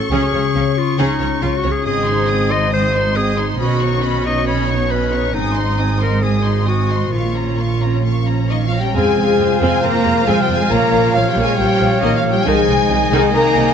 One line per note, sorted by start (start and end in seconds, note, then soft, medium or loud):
0.00 0.14 A2 soft
0.00 0.33 C#4 soft
0.00 0.14 F#4 soft
0.00 0.11 A4 medium
0.00 0.54 C#5 medium
0.00 1.86 C#6 soft
0.10 0.18 C#2 medium
0.10 1.88 C#3 medium
0.10 0.21 C#3 medium
0.10 0.32 C#4 medium
0.10 0.32 G#4 medium
0.10 0.79 G#4 medium
0.33 0.41 C#2 soft
0.33 0.43 C#3 soft
0.33 0.42 C#4 soft
0.33 1.19 C#4 soft
0.33 0.41 C#5 soft
0.55 0.63 C#2 soft
0.55 0.64 C#3 soft
0.55 0.63 C#4 soft
0.55 1.41 C#5 soft
0.55 0.63 F5 soft
0.77 1.63 F4 soft
0.77 0.98 F4 medium
0.98 1.06 C#2 medium
0.98 1.07 C#3 medium
0.98 3.62 G#3 soft
0.98 1.19 C#4 medium
0.98 1.44 D#4 medium
0.98 1.19 G#4 medium
1.20 1.28 C#2 soft
1.20 1.29 C#3 soft
1.20 1.87 C#4 soft
1.20 1.28 C#4 soft
1.20 1.28 C#5 soft
1.42 1.50 C#2 soft
1.42 1.51 C#3 soft
1.42 1.50 C#4 soft
1.42 1.58 F4 medium
1.42 1.87 C#5 soft
1.42 1.50 F5 medium
1.56 1.72 F#4 medium
1.63 1.72 C#2 soft
1.63 1.73 C#3 soft
1.63 1.73 C#4 medium
1.63 1.87 F4 soft
1.63 1.71 C#5 medium
1.71 1.86 G#4 medium
1.84 3.56 G#1 medium
1.84 3.62 G#2 medium
1.84 3.56 G#2 medium
1.84 2.06 C4 soft
1.84 2.53 G#4 medium
1.84 2.05 D#5 soft
1.84 2.06 D#6 soft
2.06 2.94 C4 soft
2.06 2.29 D#4 medium
2.06 2.29 C5 soft
2.06 2.29 C6 soft
2.28 2.52 C4 medium
2.28 3.16 D#5 soft
2.28 2.51 D#5 soft
2.28 2.51 D#6 soft
2.51 2.73 D#4 soft
2.51 2.73 C5 soft
2.51 3.37 C5 soft
2.51 2.73 D#5 medium
2.51 2.73 C6 soft
2.72 3.62 D#3 soft
2.72 2.94 C4 soft
2.72 3.18 C5 medium
2.72 2.93 D#5 soft
2.72 2.93 D#6 soft
2.94 3.62 C4 soft
2.94 3.17 D#4 soft
2.94 3.16 C5 soft
2.94 3.17 C6 soft
3.16 3.38 C4 soft
3.16 3.47 G#4 medium
3.16 3.38 D#5 soft
3.16 4.02 D#5 medium
3.16 3.38 D#6 medium
3.37 3.60 D#4 soft
3.37 3.60 C5 soft
3.37 3.62 C5 soft
3.37 3.61 C6 soft
3.59 5.31 B1 medium
3.59 5.37 B2 medium
3.59 5.32 B2 medium
3.59 3.81 C#4 soft
3.59 4.28 F#4 medium
3.59 3.80 D#5 soft
3.59 3.81 B5 soft
3.81 4.68 C#4 soft
3.81 4.03 D#4 soft
3.81 4.03 C#5 soft
3.81 4.04 C#6 soft
4.03 4.25 C#4 medium
4.03 4.25 D#5 soft
4.03 4.90 D#5 soft
4.03 4.25 B5 soft
4.24 4.48 D#4 soft
4.24 4.47 C#5 soft
4.24 5.12 C#5 soft
4.24 4.46 D#5 medium
4.24 4.47 C#6 soft
4.46 5.37 F#3 soft
4.46 4.68 C#4 soft
4.46 4.93 C#5 medium
4.46 4.67 D#5 soft
4.46 4.68 B5 soft
4.68 5.37 C#4 soft
4.68 4.92 D#4 soft
4.68 4.91 C#5 soft
4.68 4.91 C#6 soft
4.90 5.13 C#4 soft
4.90 5.36 B4 medium
4.90 5.12 D#5 soft
4.90 5.77 D#5 soft
4.90 5.13 B5 soft
5.12 5.35 D#4 soft
5.12 5.34 C#5 soft
5.12 5.37 C#5 soft
5.12 5.35 C#6 soft
5.34 7.13 G#1 medium
5.34 7.13 G#2 soft
5.34 7.15 G#2 soft
5.34 5.55 C4 soft
5.34 6.01 D#4 medium
5.34 5.55 G#5 soft
5.34 5.55 D#6 soft
5.56 6.44 C4 soft
5.56 5.79 D#4 soft
5.56 5.78 D#5 soft
5.56 5.79 C6 soft
5.78 6.01 C4 soft
5.78 6.66 D#5 soft
5.78 6.01 G#5 soft
5.78 6.01 D#6 soft
6.01 6.23 D#4 soft
6.01 6.24 A#4 medium
6.01 6.89 C5 soft
6.01 6.23 D#5 soft
6.01 6.23 C6 soft
6.22 7.15 D#3 soft
6.22 6.43 C4 soft
6.22 6.67 G#4 soft
6.22 6.43 G#5 soft
6.22 6.44 D#6 soft
6.44 7.15 C4 soft
6.44 6.67 D#4 soft
6.44 6.67 D#5 soft
6.44 6.68 C6 soft
6.67 6.90 C4 soft
6.67 7.14 F#4 medium
6.67 7.15 D#5 soft
6.67 6.90 G#5 soft
6.67 6.90 D#6 soft
6.90 7.13 D#4 soft
6.90 7.15 C5 soft
6.90 7.13 D#5 soft
6.90 7.13 C6 soft
7.12 8.71 A#1 soft
7.12 8.47 A#2 soft
7.12 8.97 A#2 soft
7.12 7.34 A#3 soft
7.12 8.72 F4 soft
7.12 7.34 F5 soft
7.12 7.34 C#6 soft
7.35 8.26 A#3 soft
7.35 7.59 C#4 soft
7.35 7.58 C#5 soft
7.35 7.59 A#5 soft
7.59 7.82 A#3 soft
7.59 8.49 A#4 soft
7.59 7.82 F5 soft
7.59 7.82 C#6 soft
7.82 8.72 C#4 soft
7.82 8.05 C#4 soft
7.82 8.05 C#5 soft
7.82 8.05 A#5 soft
8.05 10.92 F3 soft
8.05 8.26 A#3 soft
8.05 8.26 F5 soft
8.05 8.26 C#6 soft
8.27 8.97 A#3 soft
8.27 8.50 C#4 soft
8.27 8.50 C#5 soft
8.27 8.50 A#5 soft
8.49 8.64 D#3 soft
8.49 8.73 A#3 soft
8.49 8.57 D#4 medium
8.49 8.97 A#4 soft
8.49 8.64 D#5 soft
8.49 8.56 D#5 soft
8.49 8.72 F5 soft
8.49 8.73 C#6 soft
8.65 8.80 F3 soft
8.65 8.80 F4 soft
8.65 8.79 F5 soft
8.65 8.80 F5 soft
8.72 8.95 C#4 soft
8.72 8.97 C#4 soft
8.72 8.95 C#5 soft
8.72 8.95 A#5 soft
8.80 8.95 G3 soft
8.80 8.87 G4 medium
8.80 8.93 G5 soft
8.80 8.95 G5 soft
8.94 9.03 F2 medium
8.94 10.74 F2 medium
8.94 12.43 F3 medium
8.94 9.61 G#3 medium
8.94 9.16 C4 medium
8.94 10.68 C4 medium
8.94 12.43 F4 medium
8.94 9.60 G#4 medium
8.94 10.68 C5 soft
8.94 10.24 C5 soft
8.94 12.43 F5 medium
8.94 10.24 F5 medium
8.94 9.60 G#5 medium
8.94 9.61 G#5 medium
9.07 10.37 C3 soft
9.17 9.25 F2 soft
9.17 10.26 G#3 soft
9.17 9.26 C4 soft
9.29 10.16 F4 soft
9.39 9.47 F2 soft
9.39 9.49 G#3 soft
9.39 10.05 C5 soft
9.51 9.94 G#4 soft
9.61 9.69 F2 medium
9.61 9.83 G#3 medium
9.61 9.82 C4 medium
9.61 9.83 G#4 medium
9.61 9.83 F5 soft
9.61 9.82 G#5 medium
9.61 9.84 G#5 medium
9.74 10.74 C6 soft
9.83 9.91 F2 soft
9.83 10.27 A#3 medium
9.83 9.92 C4 soft
9.83 10.26 A#4 medium
9.83 11.36 F5 soft
9.83 10.29 A#5 medium
9.83 10.28 A#5 medium
10.05 10.14 F2 soft
10.05 10.13 G#3 soft
10.17 11.03 F4 soft
10.27 10.36 F2 medium
10.27 10.42 G#3 medium
10.27 10.48 G#3 soft
10.27 10.48 C4 medium
10.27 10.42 G#4 medium
10.27 10.73 C5 medium
10.27 10.71 F5 medium
10.27 10.43 G#5 medium
10.38 10.59 C3 soft
10.38 10.57 G3 medium
10.38 10.57 G5 medium
10.38 10.56 G5 medium
10.43 10.49 G4 medium
10.49 10.57 F2 soft
10.49 10.73 G#3 soft
10.49 10.58 C4 soft
10.56 10.72 G#3 medium
10.56 10.63 G#4 medium
10.56 10.71 G#5 medium
10.56 10.72 G#5 medium
10.60 10.73 C3 soft
10.71 10.80 A#1 medium
10.71 12.49 A#2 medium
10.71 10.92 A#3 medium
10.71 11.15 A#3 medium
10.71 12.44 C#4 medium
10.71 11.14 A#4 medium
10.71 11.15 C#5 soft
10.71 12.47 C#5 medium
10.71 11.14 F5 medium
10.71 11.16 A#5 medium
10.71 11.15 A#5 medium
10.93 11.01 A#1 medium
10.93 12.01 F3 soft
10.93 11.01 A#3 soft
11.04 11.25 F4 soft
11.14 11.23 A#1 soft
11.14 11.23 F3 soft
11.14 11.30 F3 medium
11.14 11.29 F4 medium
11.14 11.79 C#5 medium
11.14 12.44 C#5 medium
11.14 11.29 F5 medium
11.14 12.44 F5 medium
11.26 11.69 F4 soft
11.26 11.43 G4 medium
11.26 11.35 G5 medium
11.26 11.46 G5 medium
11.31 11.45 G3 medium
11.37 11.45 A#1 medium
11.37 11.58 A#3 medium
11.37 11.57 F5 medium
11.42 11.59 G#3 medium
11.42 11.58 G#4 medium
11.42 11.58 G#5 medium
11.47 12.48 C#6 medium
11.58 11.67 A#1 soft
11.58 12.02 G3 medium
11.58 11.67 A#3 medium
11.58 12.01 G4 medium
11.58 12.01 G5 medium
11.58 12.02 G5 medium
11.70 11.90 F4 soft
11.80 11.89 A#1 soft
11.80 11.88 F3 medium
11.80 12.48 C#5 soft
11.91 12.48 F4 soft
12.01 12.11 A#1 medium
12.01 12.17 D#3 medium
12.01 12.24 F3 soft
12.01 12.23 A#3 medium
12.01 12.16 D#4 medium
12.01 12.16 D#5 medium
12.01 12.17 D#5 medium
12.13 12.35 A#3 soft
12.13 12.32 F4 medium
12.13 12.23 F5 medium
12.17 12.32 F3 medium
12.17 12.32 F5 medium
12.25 12.33 A#1 soft
12.25 12.49 F3 soft
12.25 12.33 A#3 medium
12.31 12.47 G3 medium
12.31 12.46 G4 medium
12.31 12.46 G5 medium
12.31 12.47 G5 medium
12.36 12.49 A#3 soft
12.45 12.54 C2 medium
12.45 13.74 C3 medium
12.45 13.74 D#3 medium
12.45 12.67 D#3 medium
12.45 13.11 G#3 medium
12.45 13.74 D#4 medium
12.45 13.12 G#4 medium
12.45 13.74 D#5 medium
12.45 13.12 G#5 medium
12.45 13.74 G#5 medium
12.45 12.86 G#5 medium
12.45 13.74 G#5 medium
12.58 13.74 C4 soft
12.68 12.76 C2 soft
12.68 12.77 D#3 soft
12.68 13.74 G#3 soft
12.80 13.67 D#4 soft
12.90 12.99 C2 medium
12.90 12.98 C3 medium
12.90 13.12 D#5 soft
13.02 13.45 G#4 medium
13.12 13.21 C2 medium
13.12 13.33 D#3 medium
13.12 13.34 G#3 medium
13.12 13.34 G#4 medium
13.12 13.34 D#5 medium
13.12 13.21 G#5 medium
13.12 13.19 G#5 medium
13.24 13.74 D#6 medium
13.34 13.42 C2 soft
13.34 13.43 D#3 medium
13.34 13.74 A#3 medium
13.34 13.74 A#4 medium
13.34 13.56 D#5 medium
13.34 13.74 A#5 medium
13.46 13.74 G#4 medium
13.56 13.64 C2 medium
13.56 13.64 C3 medium
13.56 13.74 D#5 soft
13.68 13.74 D#4 soft